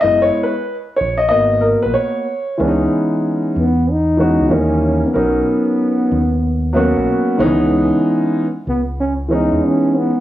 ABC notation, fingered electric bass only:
X:1
M:4/4
L:1/16
Q:"Swing 16ths" 1/4=94
K:C#dor
V:1 name="Fingered electric bass" clef=bass
F,,,2 z4 A,,,2 G,,,3 A,,, z4 | C,,2 z4 E,,4- E,, C,, D,,4 | B,,,2 z4 D,,4- D,, B,,, z2 C,,2- | C,,2 z4 C,,4- C,, E,, z4 |]